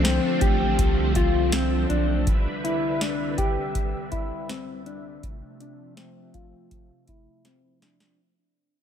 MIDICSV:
0, 0, Header, 1, 5, 480
1, 0, Start_track
1, 0, Tempo, 740741
1, 1468, Time_signature, 4, 2, 24, 8
1, 5720, End_track
2, 0, Start_track
2, 0, Title_t, "Clean electric guitar"
2, 0, Program_c, 0, 27
2, 25, Note_on_c, 0, 60, 74
2, 267, Note_off_c, 0, 60, 0
2, 269, Note_on_c, 0, 67, 64
2, 748, Note_off_c, 0, 67, 0
2, 751, Note_on_c, 0, 65, 76
2, 987, Note_on_c, 0, 60, 75
2, 990, Note_off_c, 0, 65, 0
2, 1225, Note_off_c, 0, 60, 0
2, 1228, Note_on_c, 0, 62, 69
2, 1468, Note_off_c, 0, 62, 0
2, 1712, Note_on_c, 0, 64, 66
2, 1950, Note_off_c, 0, 64, 0
2, 1950, Note_on_c, 0, 62, 71
2, 2189, Note_off_c, 0, 62, 0
2, 2190, Note_on_c, 0, 67, 66
2, 2665, Note_off_c, 0, 67, 0
2, 2667, Note_on_c, 0, 64, 70
2, 2908, Note_off_c, 0, 64, 0
2, 2908, Note_on_c, 0, 60, 74
2, 3148, Note_off_c, 0, 60, 0
2, 3150, Note_on_c, 0, 62, 63
2, 3389, Note_off_c, 0, 62, 0
2, 3633, Note_on_c, 0, 62, 61
2, 3866, Note_off_c, 0, 62, 0
2, 3869, Note_on_c, 0, 60, 64
2, 4109, Note_off_c, 0, 60, 0
2, 4109, Note_on_c, 0, 65, 62
2, 4588, Note_off_c, 0, 65, 0
2, 4591, Note_on_c, 0, 64, 66
2, 4829, Note_off_c, 0, 64, 0
2, 4831, Note_on_c, 0, 60, 67
2, 5067, Note_off_c, 0, 60, 0
2, 5069, Note_on_c, 0, 62, 62
2, 5309, Note_off_c, 0, 62, 0
2, 5720, End_track
3, 0, Start_track
3, 0, Title_t, "String machine"
3, 0, Program_c, 1, 50
3, 0, Note_on_c, 1, 50, 74
3, 0, Note_on_c, 1, 53, 75
3, 0, Note_on_c, 1, 57, 64
3, 0, Note_on_c, 1, 60, 65
3, 1445, Note_off_c, 1, 60, 0
3, 1447, Note_off_c, 1, 53, 0
3, 1448, Note_off_c, 1, 57, 0
3, 1449, Note_off_c, 1, 50, 0
3, 1462, Note_on_c, 1, 55, 64
3, 1463, Note_on_c, 1, 50, 64
3, 1465, Note_on_c, 1, 71, 68
3, 1466, Note_on_c, 1, 36, 67
3, 1466, Note_on_c, 1, 76, 78
3, 3366, Note_off_c, 1, 55, 0
3, 3367, Note_off_c, 1, 50, 0
3, 3368, Note_off_c, 1, 36, 0
3, 3368, Note_off_c, 1, 71, 0
3, 3386, Note_on_c, 1, 57, 63
3, 3389, Note_on_c, 1, 48, 69
3, 3390, Note_on_c, 1, 53, 61
3, 5281, Note_off_c, 1, 76, 0
3, 5288, Note_off_c, 1, 57, 0
3, 5290, Note_off_c, 1, 48, 0
3, 5290, Note_off_c, 1, 53, 0
3, 5720, End_track
4, 0, Start_track
4, 0, Title_t, "Analog synth bass"
4, 0, Program_c, 2, 38
4, 0, Note_on_c, 2, 36, 102
4, 123, Note_off_c, 2, 36, 0
4, 268, Note_on_c, 2, 33, 90
4, 496, Note_off_c, 2, 33, 0
4, 508, Note_on_c, 2, 36, 91
4, 1202, Note_off_c, 2, 36, 0
4, 1232, Note_on_c, 2, 35, 94
4, 1458, Note_off_c, 2, 35, 0
4, 5720, End_track
5, 0, Start_track
5, 0, Title_t, "Drums"
5, 31, Note_on_c, 9, 38, 82
5, 31, Note_on_c, 9, 42, 60
5, 96, Note_off_c, 9, 38, 0
5, 96, Note_off_c, 9, 42, 0
5, 267, Note_on_c, 9, 42, 51
5, 269, Note_on_c, 9, 36, 80
5, 332, Note_off_c, 9, 42, 0
5, 334, Note_off_c, 9, 36, 0
5, 509, Note_on_c, 9, 36, 81
5, 511, Note_on_c, 9, 42, 68
5, 574, Note_off_c, 9, 36, 0
5, 576, Note_off_c, 9, 42, 0
5, 747, Note_on_c, 9, 42, 46
5, 750, Note_on_c, 9, 36, 76
5, 812, Note_off_c, 9, 42, 0
5, 815, Note_off_c, 9, 36, 0
5, 988, Note_on_c, 9, 38, 96
5, 988, Note_on_c, 9, 42, 71
5, 1052, Note_off_c, 9, 38, 0
5, 1053, Note_off_c, 9, 42, 0
5, 1231, Note_on_c, 9, 42, 38
5, 1295, Note_off_c, 9, 42, 0
5, 1470, Note_on_c, 9, 36, 102
5, 1471, Note_on_c, 9, 42, 57
5, 1535, Note_off_c, 9, 36, 0
5, 1536, Note_off_c, 9, 42, 0
5, 1716, Note_on_c, 9, 42, 49
5, 1780, Note_off_c, 9, 42, 0
5, 1952, Note_on_c, 9, 38, 84
5, 1952, Note_on_c, 9, 42, 58
5, 2017, Note_off_c, 9, 38, 0
5, 2017, Note_off_c, 9, 42, 0
5, 2190, Note_on_c, 9, 36, 76
5, 2190, Note_on_c, 9, 42, 48
5, 2255, Note_off_c, 9, 36, 0
5, 2255, Note_off_c, 9, 42, 0
5, 2430, Note_on_c, 9, 36, 84
5, 2431, Note_on_c, 9, 42, 64
5, 2495, Note_off_c, 9, 36, 0
5, 2496, Note_off_c, 9, 42, 0
5, 2668, Note_on_c, 9, 42, 45
5, 2671, Note_on_c, 9, 36, 75
5, 2733, Note_off_c, 9, 42, 0
5, 2736, Note_off_c, 9, 36, 0
5, 2912, Note_on_c, 9, 38, 94
5, 2912, Note_on_c, 9, 42, 68
5, 2977, Note_off_c, 9, 38, 0
5, 2977, Note_off_c, 9, 42, 0
5, 3151, Note_on_c, 9, 42, 39
5, 3216, Note_off_c, 9, 42, 0
5, 3390, Note_on_c, 9, 36, 100
5, 3392, Note_on_c, 9, 42, 55
5, 3455, Note_off_c, 9, 36, 0
5, 3457, Note_off_c, 9, 42, 0
5, 3632, Note_on_c, 9, 42, 49
5, 3697, Note_off_c, 9, 42, 0
5, 3870, Note_on_c, 9, 38, 80
5, 3870, Note_on_c, 9, 42, 55
5, 3935, Note_off_c, 9, 38, 0
5, 3935, Note_off_c, 9, 42, 0
5, 4109, Note_on_c, 9, 36, 71
5, 4109, Note_on_c, 9, 42, 48
5, 4174, Note_off_c, 9, 36, 0
5, 4174, Note_off_c, 9, 42, 0
5, 4349, Note_on_c, 9, 36, 74
5, 4350, Note_on_c, 9, 42, 60
5, 4414, Note_off_c, 9, 36, 0
5, 4414, Note_off_c, 9, 42, 0
5, 4585, Note_on_c, 9, 42, 43
5, 4589, Note_on_c, 9, 36, 74
5, 4650, Note_off_c, 9, 42, 0
5, 4654, Note_off_c, 9, 36, 0
5, 4827, Note_on_c, 9, 38, 46
5, 4827, Note_on_c, 9, 42, 68
5, 4891, Note_off_c, 9, 42, 0
5, 4892, Note_off_c, 9, 38, 0
5, 5069, Note_on_c, 9, 38, 70
5, 5069, Note_on_c, 9, 42, 36
5, 5133, Note_off_c, 9, 42, 0
5, 5134, Note_off_c, 9, 38, 0
5, 5187, Note_on_c, 9, 38, 72
5, 5251, Note_off_c, 9, 38, 0
5, 5720, End_track
0, 0, End_of_file